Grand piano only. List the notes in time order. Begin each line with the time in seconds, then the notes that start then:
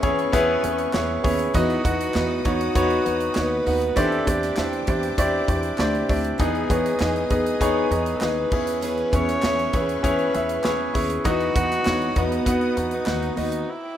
Already playing: E3 B3 C#4 E4 G#4 B4 C#5
0.02 B3 C#4 E4 G#4 C#5
0.32 B3 C#4 E4 G#4 B4
0.63 B3 C#4 E4 G#4 B4
0.93 B3 C#4 E4 G#4 C#5
1.23 B3 C#4 E4 G#4 C#5
1.54 E3 B3 D#4 F#4 B4 D#5
1.84 B3 D#4 F#4 B4 F#5
2.14 B3 D#4 F#4 B4 D#5
2.45 B3 D#4 F#4 B4 C#5
2.75 B3 D#4 F#4 B4 C#5
3.05 B3 D#4 F#4 B4 C#5
3.35 B3 D#4 F#4 B4 C#5
3.66 B3 D#4 F#4 B4 F#5
3.96 E3 D4 E4 G4 C5 D5
4.26 D4 E4 G4 C5 D5
4.57 D4 E4 G4 C5 E5
4.87 D4 E4 G4 C5 D5
5.18 D4 E4 G4 C5 D5
5.48 D4 E4 G4 C5 D5
5.79 D4 E4 G4 C5 D5
6.09 D4 E4 G4 C5 D5
6.40 E3 B3 D#4 G#4 B4 D#5
6.70 B3 D#4 G#4 B4 C#5
7.01 B3 D#4 G#4 B4 D#5
7.31 B3 D#4 G#4 B4 D#5
7.61 B3 D#4 G#4 B4 C#5
7.91 B3 D#4 G#4 B4 D#5
8.22 B3 D#4 G#4 B4 D#5
8.53 E3 C#4 E4 G#4 B4 C#5
9.13 C#4 E4 G#4 B4 C#5
9.44 C#4 E4 G#4 B4 C#5
9.74 C#4 E4 G#4 B4 C#5
10.03 C#4 E4 G#4 B4 C#5
10.34 C#4 E4 G#4 B4 E5
10.64 C#4 E4 G#4 B4 C#5
10.93 C#4 E4 G#4 B4 C#5
11.25 E3 B3 D#4 F#4 B4 D#5
11.55 B3 D#4 F#4 B4 F#5
11.85 B3 D#4 F#4 B4 C#5
12.16 B3 D#4 F#4 B4 D#5
12.46 B3 D#4 F#4 B4 F#5
12.77 B3 D#4 F#4 B4 F#5
13.06 B3 D#4 F#4 B4 F#5
13.36 B3 D#4 F#4 B4 D#5